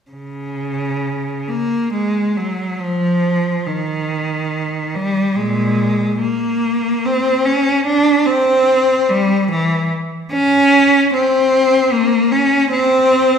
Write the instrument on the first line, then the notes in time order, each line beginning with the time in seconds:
cello
0.11 C#3
1.48 A#3
1.93 G#3
2.37 F#3
2.80 F3
3.66 D#3
4.95 G3
5.36 A#2 G#3
6.19 A#3
7.05 C4
7.45 C#4
7.86 D4
8.26 C4
9.10 G3
9.51 E3
10.31 C#4
11.13 C4
11.92 A#3
12.31 C#4
12.71 C4